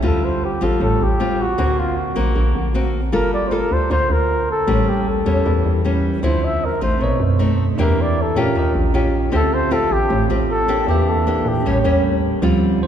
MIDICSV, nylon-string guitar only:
0, 0, Header, 1, 2, 480
1, 0, Start_track
1, 0, Key_signature, -1, "minor"
1, 0, Tempo, 387347
1, 38, Time_signature, 4, 2, 24, 8
1, 15950, End_track
2, 0, Start_track
2, 0, Title_t, "Nylon-string guitar"
2, 0, Program_c, 0, 24
2, 29, Note_on_c, 0, 50, 51
2, 30, Note_on_c, 0, 55, 54
2, 34, Note_on_c, 0, 60, 54
2, 41, Note_on_c, 0, 65, 58
2, 715, Note_off_c, 0, 55, 0
2, 718, Note_off_c, 0, 60, 0
2, 721, Note_off_c, 0, 65, 0
2, 755, Note_on_c, 0, 55, 52
2, 765, Note_on_c, 0, 60, 57
2, 768, Note_on_c, 0, 65, 65
2, 970, Note_off_c, 0, 50, 0
2, 998, Note_on_c, 0, 45, 54
2, 1439, Note_off_c, 0, 55, 0
2, 1441, Note_off_c, 0, 60, 0
2, 1445, Note_off_c, 0, 65, 0
2, 1484, Note_on_c, 0, 55, 51
2, 1487, Note_on_c, 0, 60, 52
2, 1494, Note_on_c, 0, 65, 55
2, 1790, Note_off_c, 0, 55, 0
2, 1793, Note_off_c, 0, 60, 0
2, 1794, Note_off_c, 0, 65, 0
2, 1934, Note_off_c, 0, 45, 0
2, 1956, Note_on_c, 0, 50, 55
2, 1959, Note_on_c, 0, 58, 55
2, 1965, Note_on_c, 0, 60, 55
2, 1967, Note_on_c, 0, 66, 67
2, 2642, Note_off_c, 0, 58, 0
2, 2642, Note_off_c, 0, 60, 0
2, 2644, Note_off_c, 0, 66, 0
2, 2673, Note_on_c, 0, 58, 62
2, 2678, Note_on_c, 0, 60, 55
2, 2684, Note_on_c, 0, 66, 59
2, 2893, Note_off_c, 0, 50, 0
2, 2917, Note_on_c, 0, 50, 48
2, 3357, Note_off_c, 0, 58, 0
2, 3360, Note_off_c, 0, 60, 0
2, 3363, Note_off_c, 0, 66, 0
2, 3401, Note_on_c, 0, 58, 48
2, 3407, Note_on_c, 0, 60, 54
2, 3410, Note_on_c, 0, 66, 64
2, 3709, Note_off_c, 0, 58, 0
2, 3710, Note_off_c, 0, 60, 0
2, 3714, Note_off_c, 0, 66, 0
2, 3854, Note_off_c, 0, 50, 0
2, 3870, Note_on_c, 0, 55, 55
2, 3873, Note_on_c, 0, 58, 56
2, 3880, Note_on_c, 0, 65, 56
2, 3880, Note_on_c, 0, 69, 67
2, 4317, Note_off_c, 0, 58, 0
2, 4319, Note_off_c, 0, 65, 0
2, 4321, Note_off_c, 0, 69, 0
2, 4350, Note_on_c, 0, 58, 50
2, 4355, Note_on_c, 0, 65, 46
2, 4362, Note_on_c, 0, 69, 48
2, 4796, Note_off_c, 0, 58, 0
2, 4799, Note_off_c, 0, 65, 0
2, 4801, Note_off_c, 0, 69, 0
2, 4811, Note_off_c, 0, 55, 0
2, 4835, Note_on_c, 0, 50, 48
2, 4843, Note_on_c, 0, 58, 50
2, 4845, Note_on_c, 0, 65, 46
2, 5484, Note_off_c, 0, 58, 0
2, 5487, Note_off_c, 0, 65, 0
2, 5774, Note_off_c, 0, 50, 0
2, 5791, Note_on_c, 0, 45, 55
2, 5793, Note_on_c, 0, 55, 61
2, 5798, Note_on_c, 0, 58, 57
2, 5799, Note_on_c, 0, 61, 57
2, 6477, Note_off_c, 0, 55, 0
2, 6479, Note_off_c, 0, 58, 0
2, 6480, Note_off_c, 0, 61, 0
2, 6516, Note_on_c, 0, 55, 55
2, 6520, Note_on_c, 0, 58, 54
2, 6523, Note_on_c, 0, 61, 54
2, 6731, Note_off_c, 0, 45, 0
2, 6760, Note_on_c, 0, 52, 52
2, 7199, Note_off_c, 0, 55, 0
2, 7200, Note_off_c, 0, 58, 0
2, 7202, Note_off_c, 0, 61, 0
2, 7244, Note_on_c, 0, 55, 50
2, 7253, Note_on_c, 0, 58, 49
2, 7254, Note_on_c, 0, 61, 53
2, 7695, Note_off_c, 0, 52, 0
2, 7703, Note_off_c, 0, 55, 0
2, 7704, Note_off_c, 0, 58, 0
2, 7707, Note_off_c, 0, 61, 0
2, 7716, Note_on_c, 0, 50, 56
2, 7719, Note_on_c, 0, 53, 55
2, 7728, Note_on_c, 0, 60, 60
2, 7732, Note_on_c, 0, 64, 62
2, 8195, Note_off_c, 0, 53, 0
2, 8197, Note_off_c, 0, 60, 0
2, 8202, Note_off_c, 0, 64, 0
2, 8442, Note_on_c, 0, 57, 51
2, 8448, Note_on_c, 0, 63, 64
2, 8655, Note_off_c, 0, 50, 0
2, 8680, Note_on_c, 0, 47, 47
2, 9122, Note_off_c, 0, 57, 0
2, 9125, Note_off_c, 0, 63, 0
2, 9160, Note_on_c, 0, 57, 53
2, 9165, Note_on_c, 0, 60, 50
2, 9171, Note_on_c, 0, 63, 52
2, 9468, Note_off_c, 0, 57, 0
2, 9472, Note_off_c, 0, 60, 0
2, 9473, Note_off_c, 0, 63, 0
2, 9615, Note_off_c, 0, 47, 0
2, 9643, Note_on_c, 0, 52, 59
2, 9647, Note_on_c, 0, 58, 60
2, 9654, Note_on_c, 0, 67, 64
2, 9655, Note_on_c, 0, 62, 63
2, 10119, Note_off_c, 0, 58, 0
2, 10121, Note_off_c, 0, 62, 0
2, 10123, Note_off_c, 0, 67, 0
2, 10364, Note_on_c, 0, 61, 62
2, 10369, Note_on_c, 0, 65, 63
2, 10375, Note_on_c, 0, 67, 65
2, 10578, Note_off_c, 0, 52, 0
2, 10599, Note_on_c, 0, 51, 52
2, 11042, Note_off_c, 0, 61, 0
2, 11045, Note_off_c, 0, 65, 0
2, 11047, Note_off_c, 0, 67, 0
2, 11077, Note_on_c, 0, 61, 53
2, 11086, Note_on_c, 0, 65, 54
2, 11088, Note_on_c, 0, 67, 57
2, 11519, Note_off_c, 0, 61, 0
2, 11523, Note_off_c, 0, 67, 0
2, 11524, Note_off_c, 0, 65, 0
2, 11534, Note_off_c, 0, 51, 0
2, 11544, Note_on_c, 0, 50, 60
2, 11550, Note_on_c, 0, 60, 51
2, 11552, Note_on_c, 0, 65, 54
2, 11560, Note_on_c, 0, 67, 64
2, 11995, Note_off_c, 0, 60, 0
2, 11996, Note_off_c, 0, 65, 0
2, 12000, Note_off_c, 0, 67, 0
2, 12030, Note_on_c, 0, 60, 48
2, 12036, Note_on_c, 0, 65, 53
2, 12040, Note_on_c, 0, 67, 64
2, 12486, Note_off_c, 0, 50, 0
2, 12515, Note_on_c, 0, 45, 52
2, 12715, Note_off_c, 0, 60, 0
2, 12717, Note_off_c, 0, 65, 0
2, 12720, Note_off_c, 0, 67, 0
2, 12761, Note_on_c, 0, 60, 60
2, 12763, Note_on_c, 0, 65, 62
2, 12771, Note_on_c, 0, 67, 54
2, 13200, Note_off_c, 0, 65, 0
2, 13201, Note_off_c, 0, 60, 0
2, 13205, Note_off_c, 0, 67, 0
2, 13237, Note_on_c, 0, 58, 57
2, 13244, Note_on_c, 0, 62, 59
2, 13247, Note_on_c, 0, 67, 65
2, 13451, Note_off_c, 0, 45, 0
2, 13487, Note_on_c, 0, 52, 57
2, 13918, Note_off_c, 0, 58, 0
2, 13920, Note_off_c, 0, 62, 0
2, 13923, Note_off_c, 0, 67, 0
2, 13962, Note_on_c, 0, 58, 49
2, 13968, Note_on_c, 0, 62, 45
2, 13977, Note_on_c, 0, 67, 56
2, 14417, Note_off_c, 0, 52, 0
2, 14419, Note_off_c, 0, 58, 0
2, 14422, Note_off_c, 0, 62, 0
2, 14427, Note_off_c, 0, 67, 0
2, 14446, Note_on_c, 0, 55, 49
2, 14452, Note_on_c, 0, 45, 46
2, 14454, Note_on_c, 0, 58, 52
2, 14458, Note_on_c, 0, 61, 58
2, 14582, Note_off_c, 0, 55, 0
2, 14585, Note_off_c, 0, 58, 0
2, 14588, Note_off_c, 0, 61, 0
2, 14677, Note_on_c, 0, 55, 53
2, 14683, Note_on_c, 0, 58, 49
2, 14687, Note_on_c, 0, 61, 64
2, 15357, Note_off_c, 0, 55, 0
2, 15359, Note_off_c, 0, 58, 0
2, 15362, Note_off_c, 0, 61, 0
2, 15379, Note_off_c, 0, 45, 0
2, 15391, Note_on_c, 0, 50, 59
2, 15394, Note_on_c, 0, 55, 55
2, 15397, Note_on_c, 0, 60, 52
2, 15405, Note_on_c, 0, 65, 68
2, 15869, Note_off_c, 0, 55, 0
2, 15872, Note_off_c, 0, 60, 0
2, 15876, Note_off_c, 0, 65, 0
2, 15950, Note_off_c, 0, 50, 0
2, 15950, End_track
0, 0, End_of_file